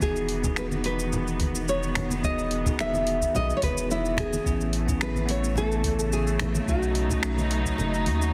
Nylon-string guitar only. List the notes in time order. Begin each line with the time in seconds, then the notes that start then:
0.02 G#4
0.58 B4
0.86 B4
1.69 C#5
2.25 D#5
2.81 E5
3.36 D#5
3.57 C#5
3.63 B4
3.91 E4
4.20 G#4
5.02 B4
5.30 C#5
5.58 A4
5.99 G#4
6.13 G#4
6.69 F#4